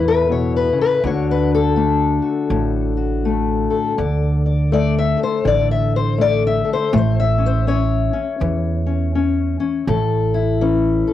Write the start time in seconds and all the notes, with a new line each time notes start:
Already playing: E2 A2 E3
0.00 E4
0.08 B4
0.29 B2 C#5
0.56 B4
0.73 C#3
0.81 B4
1.04 D2 D3 A3 D4 F#4 C#5
1.31 B4
1.55 A4
1.76 A3 D4
2.22 F#4
2.50 A1 A2
2.97 F#4
3.25 A3
3.70 A4
3.98 D2 D3 D5
4.46 D5
4.72 A3 D5
4.99 E5
5.17 A4
5.23 C5
5.45 A1 D3 D5
5.71 E5
5.96 C5
6.18 A3 D5
6.47 E5
6.65 A4
6.73 C5
6.93 A1 A3
6.97 C5
7.20 E5
7.38 C#4
7.46 C5
7.67 C#4 C#5
8.13 C#4
8.40 E2 E3
8.86 C#4
9.15 C#4
9.60 C#4
9.87 A1 A2 A4
10.34 E4
10.61 E3 C#4
11.07 A4